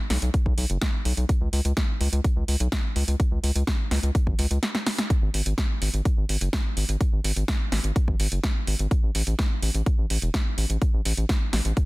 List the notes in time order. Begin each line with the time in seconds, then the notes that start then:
0.10 B1, snare, open hi-hat
0.22 B1, closed hi-hat
0.34 kick, closed hi-hat
0.46 B1, kick
0.58 B1, open hi-hat
0.70 F#1, closed hi-hat
0.82 kick, snare, closed hi-hat
1.05 B1, open hi-hat
1.17 B1, closed hi-hat
1.29 kick, closed hi-hat
1.41 C#2
1.53 C#2, open hi-hat
1.65 C#2, closed hi-hat
1.77 kick, snare, closed hi-hat
2.01 C#2, open hi-hat
2.13 C#2, closed hi-hat
2.24 kick, closed hi-hat
2.36 C#2
2.48 C#2, open hi-hat
2.60 B1, closed hi-hat
2.72 kick, snare, closed hi-hat
2.96 C#2, open hi-hat
3.08 C#2, closed hi-hat
3.20 kick, closed hi-hat
3.31 C#2
3.43 C#2, open hi-hat
3.55 C#2, closed hi-hat
3.67 kick, snare, closed hi-hat
3.91 C#2, snare, open hi-hat
4.03 C#2, closed hi-hat
4.15 kick, closed hi-hat
4.27 G#1, kick
4.39 C#2, open hi-hat
4.51 C#2, closed hi-hat
4.63 snare, closed hi-hat
4.75 snare
4.87 snare, open hi-hat
4.98 snare, closed hi-hat
5.10 kick, closed hi-hat
5.22 G#1
5.34 G#1, open hi-hat
5.46 G#1, closed hi-hat
5.58 kick, snare, closed hi-hat
5.82 G#1, open hi-hat
5.94 G#1, closed hi-hat
6.05 kick, closed hi-hat
6.17 G#1
6.29 G#1, open hi-hat
6.41 F#1, closed hi-hat
6.53 kick, snare, closed hi-hat
6.77 G#1, open hi-hat
6.89 G#1, closed hi-hat
7.01 kick, closed hi-hat
7.13 G#1
7.24 G#1, open hi-hat
7.36 G#1, closed hi-hat
7.48 kick, snare, closed hi-hat
7.72 G#1, snare, open hi-hat
7.84 G#1, closed hi-hat
7.96 kick, closed hi-hat
8.08 G#1, kick
8.20 G#1, open hi-hat
8.32 F#1, closed hi-hat
8.44 kick, snare, closed hi-hat
8.67 G#1, open hi-hat
8.79 G#1, closed hi-hat
8.91 kick, closed hi-hat
9.03 A1
9.15 A1, open hi-hat
9.27 A1, closed hi-hat
9.39 kick, snare, closed hi-hat
9.62 A1, open hi-hat
9.74 A1, closed hi-hat
9.86 kick, closed hi-hat
9.98 A1
10.10 A1, open hi-hat
10.22 E1, closed hi-hat
10.34 kick, snare, closed hi-hat
10.58 A1, open hi-hat
10.70 A1, closed hi-hat
10.82 kick, closed hi-hat
10.94 A1
11.05 A1, open hi-hat
11.17 A1, closed hi-hat
11.29 kick, snare, closed hi-hat
11.53 A1, snare, open hi-hat
11.65 A1, closed hi-hat
11.77 kick, closed hi-hat